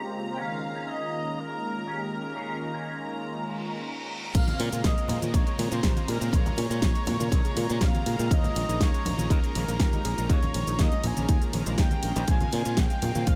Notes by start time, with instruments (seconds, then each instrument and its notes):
Already playing: analog synth pad A#3 C4 G4, string section A#5
0.12 analog synth pad C#3 G#3 A#3 C4 F4, muted clean electric guitar stroke
0.31 trumpet section G5
0.36 analog synth pad D#3 G#3 A#3 C#4 F4, clean electric guitar C#4 D#4 G#4, trumpet section F5
0.74 analog synth pad D#3 G#3 A#3 C#4 F4, clean electric guitar C#4 D#4 G#4
0.88 trumpet section D#5
1.11 analog synth pad D#3 G#3 A#3 C#4 F4
1.37 trumpet section A#4
1.48 analog synth pad D#3 G#3 A#3 C#4 F4, muted clean electric guitar stroke
1.61 muted clean electric guitar stroke
1.74 muted clean electric guitar stroke
1.86 analog synth pad D#3 G#3 A#3 C#4 G4, clean electric guitar C#4 D#4 G#4
2.11 analog synth pad D#3 G#3 A#3 C#4 F4, muted clean electric guitar stroke
2.35 analog synth pad D#3 G#3 A#3 C#4 F4, clean electric guitar C#4 D#4 G#4
2.73 analog synth pad D#3 G#3 A#3 C#4 F4, clean electric guitar C#4 D#4 G#4
3.10 analog synth pad D#3 G#3 A#3 C#4 F4
3.35 reverse cymbal
3.48 analog synth pad D#3 G#3 A#3 C#4 F4, muted clean electric guitar stroke
3.60 muted clean electric guitar stroke
3.73 muted clean electric guitar stroke
4.34 fingered electric bass A#1, analog synth pad C#3 G#3 A#3 C4 F4, synth arpeggio sound G#3, trumpet section F5, string section A#5, kick, closed hi-hat, crash, ride, high bongo, cabasa, shaker
4.47 synth arpeggio sound A#3, closed hi-hat, high conga, low conga, cabasa, shaker
4.59 fingered electric bass A#2, synth arpeggio sound C#4, open hi-hat, ride, shaker
4.72 fingered electric bass A#2, analog synth pad C#3 G#3 A#3 C4 F4, synth arpeggio sound F4, closed hi-hat, cabasa, shaker
4.84 fingered electric bass A#1, synth arpeggio sound G#4, trumpet section D#5, kick, snare, closed hi-hat, ride, high bongo, high conga, cabasa, shaker
4.97 synth arpeggio sound G#3, closed hi-hat, cabasa, shaker
5.08 fingered electric bass A#2, analog synth pad C#3 G#3 A#3 C4 F4, synth arpeggio sound A#3, open hi-hat, ride, low conga, shaker
5.22 fingered electric bass A#2, synth arpeggio sound C#4, closed hi-hat, high bongo, high conga, cabasa, shaker
5.34 fingered electric bass A#1, synth arpeggio sound F4, trumpet section C#5, kick, closed hi-hat, ride, cabasa, shaker
5.46 analog synth pad C#3 G#3 A#3 C4 F4, synth arpeggio sound G#4, closed hi-hat, cabasa, shaker
5.58 fingered electric bass A#2, synth arpeggio sound G#3, open hi-hat, ride, high conga, shaker
5.71 fingered electric bass A#2, synth arpeggio sound A#3, trumpet section C5, closed hi-hat, high bongo, cabasa, shaker
5.83 fingered electric bass A#1, analog synth pad C#3 G#3 A#3 C4 G4, synth arpeggio sound C#4, kick, snare, closed hi-hat, ride, cabasa, shaker
5.96 synth arpeggio sound F4, closed hi-hat, high conga, cabasa, shaker
6.08 fingered electric bass A#2, analog synth pad C#3 G#3 A#3 C4 F4, synth arpeggio sound G#4, trumpet section A#4, open hi-hat, ride, high bongo, shaker
6.21 fingered electric bass A#2, synth arpeggio sound G#3, closed hi-hat, cabasa
6.31 fingered electric bass A#1, analog synth pad C3 C#3 G#3 A#3 F4, synth arpeggio sound G#3, trumpet section C#5, kick, closed hi-hat, ride, cabasa, shaker
6.46 synth arpeggio sound A#3, closed hi-hat, high conga, low conga, cabasa, shaker
6.57 fingered electric bass A#2, synth arpeggio sound C#4, open hi-hat, ride, high bongo, shaker
6.69 fingered electric bass A#2, analog synth pad C3 C#3 G#3 A#3 F4, synth arpeggio sound F4, closed hi-hat, cabasa, shaker
6.81 fingered electric bass A#1, synth arpeggio sound G#4, kick, snare, closed hi-hat, ride, high conga, cabasa, shaker
6.93 synth arpeggio sound G#3, closed hi-hat, high bongo, cabasa, shaker
7.06 fingered electric bass A#2, analog synth pad C3 C#3 G#3 A#3 F4, synth arpeggio sound A#3, open hi-hat, ride, low conga, shaker
7.19 fingered electric bass A#2, synth arpeggio sound C#4, closed hi-hat, high conga, cabasa, shaker
7.31 fingered electric bass A#1, synth arpeggio sound F4, kick, closed hi-hat, ride, cabasa, shaker
7.44 analog synth pad C3 C#3 G#3 A#3 F4, synth arpeggio sound G#4, closed hi-hat, high bongo, cabasa, shaker
7.56 fingered electric bass A#2, synth arpeggio sound G#3, open hi-hat, ride, high conga, shaker
7.69 fingered electric bass A#2, synth arpeggio sound A#3, closed hi-hat, cabasa, shaker
7.81 fingered electric bass A#1, analog synth pad C#3 G#3 A#3 C4 G4, synth arpeggio sound C#4, trumpet section F5, kick, snare, closed hi-hat, ride, high bongo, cabasa, shaker
7.94 synth arpeggio sound F4, closed hi-hat, high conga, cabasa, shaker
8.06 fingered electric bass A#2, analog synth pad C#3 G#3 A#3 C4 F4, synth arpeggio sound G#4, open hi-hat, ride, shaker
8.19 fingered electric bass A#2, synth arpeggio sound G#3, closed hi-hat, cabasa
8.31 fingered electric bass D#2, analog synth pad D#3 G#3 A#3 C#4 F4, synth arpeggio sound G#3, trumpet section D#5, kick, closed hi-hat, ride, high bongo, cabasa, shaker
8.43 synth arpeggio sound A#3, closed hi-hat, high conga, low conga, cabasa, shaker
8.55 fingered electric bass A#1, synth arpeggio sound C#4, open hi-hat, ride, shaker
8.69 fingered electric bass A#1, analog synth pad D#3 G#3 A#3 C#4 F4, synth arpeggio sound D#4, closed hi-hat, high bongo, cabasa, shaker
8.80 fingered electric bass D#2, synth arpeggio sound G#4, trumpet section C#5, kick, snare, closed hi-hat, ride, high conga, cabasa, shaker
8.94 synth arpeggio sound G#3, closed hi-hat, cabasa, shaker
9.05 fingered electric bass A#1, analog synth pad D#3 G#3 A#3 C#4 F4, synth arpeggio sound A#3, open hi-hat, ride, low conga, shaker
9.18 fingered electric bass A#1, synth arpeggio sound C#4, closed hi-hat, high bongo, high conga, cabasa, shaker
9.30 fingered electric bass D#2, synth arpeggio sound D#4, trumpet section A#4, kick, closed hi-hat, ride, cabasa, shaker
9.43 analog synth pad D#3 G#3 A#3 C#4 F4, synth arpeggio sound G#4, closed hi-hat, cabasa, shaker
9.55 fingered electric bass A#1, synth arpeggio sound G#3, open hi-hat, ride, high bongo, high conga, shaker
9.68 fingered electric bass A#1, synth arpeggio sound A#3, closed hi-hat, cabasa, shaker
9.80 fingered electric bass D#2, analog synth pad D#3 G#3 A#3 C#4 G4, synth arpeggio sound C#4, trumpet section A#4, kick, snare, closed hi-hat, ride, cabasa, shaker
9.92 synth arpeggio sound D#4, closed hi-hat, high conga, cabasa, shaker
10.04 fingered electric bass A#1, analog synth pad D#3 G#3 A#3 C#4 F4, synth arpeggio sound G#4, open hi-hat, ride, high bongo, shaker
10.18 fingered electric bass A#1, synth arpeggio sound G#3, closed hi-hat, cabasa, shaker
10.29 fingered electric bass D#2, analog synth pad D#3 G#3 A#3 C#4 F4, synth arpeggio sound G#3, trumpet section C#5, kick, closed hi-hat, ride, cabasa, shaker
10.43 synth arpeggio sound A#3, closed hi-hat, high bongo, high conga, low conga, cabasa, shaker
10.54 fingered electric bass A#1, synth arpeggio sound C#4, open hi-hat, ride, shaker
10.67 fingered electric bass A#1, analog synth pad D#3 G#3 A#3 C#4 F4, synth arpeggio sound D#4, closed hi-hat, cabasa, shaker
10.79 fingered electric bass D#2, synth arpeggio sound G#4, trumpet section D#5, kick, snare, closed hi-hat, ride, high conga, cabasa, shaker
10.92 synth arpeggio sound G#3, closed hi-hat, high bongo, cabasa, shaker
11.03 fingered electric bass A#1, analog synth pad D#3 G#3 A#3 C#4 F4, synth arpeggio sound A#3, trumpet section G#5, open hi-hat, ride, low conga, shaker
11.17 fingered electric bass A#1, synth arpeggio sound C#4, closed hi-hat, high conga, cabasa, shaker
11.29 fingered electric bass D#2, synth arpeggio sound D#4, kick, closed hi-hat, ride, high bongo, cabasa, shaker
11.41 analog synth pad D#3 G#3 A#3 C#4 F4, synth arpeggio sound G#4, closed hi-hat, cabasa, shaker
11.53 fingered electric bass A#1, synth arpeggio sound C#4, open hi-hat, ride, high conga, shaker
11.66 fingered electric bass A#1, synth arpeggio sound G#3, closed hi-hat, cabasa
11.78 fingered electric bass D#2, analog synth pad D#3 G#3 A#3 C#4 G4, synth arpeggio sound C#4, trumpet section G5, kick, snare, closed hi-hat, ride, high bongo, cabasa, shaker
11.91 synth arpeggio sound A#3, closed hi-hat, high conga, cabasa, shaker
12.03 fingered electric bass A#1, analog synth pad D#3 G#3 A#3 C#4 F4, synth arpeggio sound A#3, open hi-hat, ride, shaker
12.16 fingered electric bass A#1, synth arpeggio sound D#4, closed hi-hat, high bongo, cabasa, shaker
12.27 fingered electric bass A#1, analog synth pad C#3 G#3 A#3 C4 F4, synth arpeggio sound G#3, string section F5, trumpet section G#5, kick, closed hi-hat, ride, high bongo, cabasa, shaker
12.40 synth arpeggio sound A#3, closed hi-hat, high conga, low conga, cabasa, shaker
12.52 fingered electric bass A#2, synth arpeggio sound C#4, open hi-hat, ride, shaker
12.65 fingered electric bass A#2, analog synth pad C#3 G#3 A#3 C4 F4, synth arpeggio sound F4, closed hi-hat, cabasa, shaker
12.77 fingered electric bass A#1, synth arpeggio sound G#4, trumpet section G5, kick, snare, closed hi-hat, ride, high bongo, high conga, cabasa, shaker
12.90 synth arpeggio sound G#3, closed hi-hat, cabasa, shaker
13.02 fingered electric bass A#2, analog synth pad C#3 G#3 A#3 C4 F4, synth arpeggio sound A#3, open hi-hat, ride, low conga, shaker
13.15 fingered electric bass A#2, synth arpeggio sound C#4, closed hi-hat, high bongo, high conga, cabasa, shaker
13.27 fingered electric bass A#1, synth arpeggio sound F4, trumpet section F5, kick, closed hi-hat, ride, cabasa, shaker